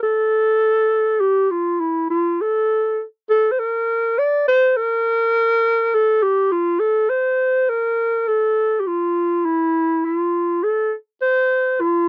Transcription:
0.03 A4
1.21 G4
1.51 F4
1.80 E4
2.10 F4
2.41 A4
3.30 A4
3.51 C5
3.59 A#4
4.19 D5
4.48 C5
4.76 A#4
5.95 A4
6.23 G4
6.52 F4
6.80 A4
7.10 C5
7.69 A#4
8.28 A4
8.80 G4
8.86 F4
9.45 E4
10.05 F4
10.63 A4
11.21 C5
11.80 F4

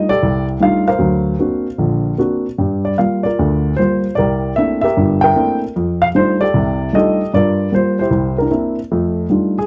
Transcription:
0.09 G4 A4 D5
0.23 C2
0.60 G3 A3 D4 D#4 F4 F5
0.88 A#4 C5 F5
0.99 D2 F#3
1.39 A#3 C4 D4 F#4
1.78 A#1 D3
2.18 A#3 C4 D4 F#4
2.58 G2 G3
2.85 D5
2.98 G3 A#3 F4 F5
3.23 F4 A#4 D5
3.39 D2 D3
3.77 G3 A#3 F4 C5
4.15 C2 G4 A#4 D5
4.56 A3 A#3 C4 D4 E4 E5
4.81 G4 A#4 E5
4.97 G1 G2
5.21 A#4 E5 G5
5.36 A3 A#3 C4 D4 E4
5.76 F2
6.02 F5
6.15 G3 A3 D4 D#4 F4 C5
6.41 G4 A4 D5
6.54 C2 C3
6.93 G3 A3 D4 D#4 F4 G4 A4 D#5
7.34 G2 F4 A#4 D5
7.72 G3 A#3 F4 C5
7.99 E4 G4 C5
8.11 C2
8.38 D4 E4 A#4
8.51 A#3 C4 D4 E4
8.92 F2 A3
9.30 G3 A3 D4 D#4 F4
9.59 G#4

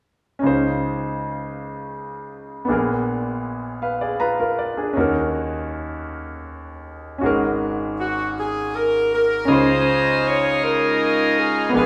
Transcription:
0.39 C#4 D#4
0.43 C#2 C#3 F4 C5
2.65 A#1 A#2 B3 D4
2.70 G#4 A#4
3.82 B4 F5
4.01 G#4 D5
4.20 F4 B4 A#5
4.40 F4 A#4
4.59 D5
4.77 D4 G#4
4.93 D#2 D#3 C#4 D#4
4.98 F#4 A#4
7.18 C#4 F#4
7.23 G#1 G#2 G#4 A#4
8.00 F#4
8.39 G#4
8.76 A#4
9.14 A#4
9.45 C#2 C#3 G#3 C#4 D#4 D#5 F5
9.50 D#4 F4 C5 C6
10.26 C#5
10.64 D#4 F4 A#4
11.38 G#4
11.69 B3 D4
11.73 A#1 A#2 G#3 A#3 D4 G#4 B4

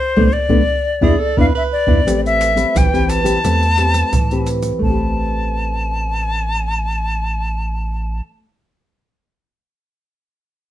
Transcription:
Already playing: C5
0.16 B1 A3 B3 D4, surdo
0.33 D5
0.49 B1 A3 B3 D4, surdo
1.01 E2 B3 D4 E4 G#4, surdo
1.18 A4
1.37 E2 B3 D4 E4 B4 F5, surdo
1.55 B4 E5
1.72 D5
1.87 E2 B3 D4 E4, surdo
2.06 A1 A3 C4 G4 B4, pandeiro, shaker, surdo
2.26 E5, pandeiro, shaker
2.41 pandeiro, shaker
2.56 C4 G4 B4, pandeiro, shaker
2.75 A1 E3 G5, pandeiro, shaker, surdo
2.93 A1 C4 G4 B4, pandeiro, shaker
3.09 A5, pandeiro, shaker
3.24 C4 G4 B4, pandeiro, shaker
3.44 E2 A3 C4 G4 B4, pandeiro, shaker, surdo
3.63 pandeiro, shaker
3.78 C4 G4 B4, pandeiro
3.94 pandeiro, shaker
4.13 A2 E3, pandeiro, shaker, surdo
4.31 C4 G4 B4, pandeiro, shaker
4.46 pandeiro, shaker
4.63 pandeiro, shaker
4.79 A3, surdo
4.83 A1 C4 A5
4.89 G4
4.94 B4

